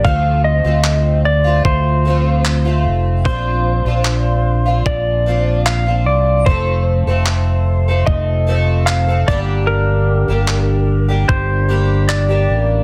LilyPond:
<<
  \new Staff \with { instrumentName = "Electric slide guitar" } { \time 4/4 \key g \minor \tempo 4 = 75 f''8 ees''4 d''8 c''4. r8 | c''2 d''4 f''8 d''8 | c''2 ees''4 f''8 d''8 | bes'2 c''4 d''4 | }
  \new Staff \with { instrumentName = "Twelve-string acoustic guitar" } { \time 4/4 \key g \minor <f a c' f'>8. <a c' f'>4 <a c' f'>8. <f a c' f'>8. <a c' f'>8. | <f c' d' f'>8. <c' d' f'>4 <c' d' f'>8. <f c' d' f'>8. <c' d' f'>8. | <f a c' a'>8. <f a c' a'>4 <f a c' a'>8. <f a c' a'>8. <f a c' a'>16 <g, d g bes d' g'>8~ | <g, d g bes d' g'>8. <g bes d' g'>4 <g bes d' g'>8. <g bes d' g'>8. <g bes d' g'>8. | }
  \new Staff \with { instrumentName = "Fingered electric bass" } { \clef bass \time 4/4 \key g \minor d,8. d,4~ d,16 d,4. f,,8 | bes,,8. bes,,4~ bes,,16 bes,,4. c,8 | f,,8. f,,4~ f,,16 f,,4. g,,8~ | g,,8. g,,4~ g,,16 g,,4. a,,8 | }
  \new DrumStaff \with { instrumentName = "Drums" } \drummode { \time 4/4 bd4 hc4 bd4 hc4 | bd4 hc4 bd4 hc4 | bd4 hc4 bd4 hc8 bd8 | r4 hc4 bd4 hc4 | }
>>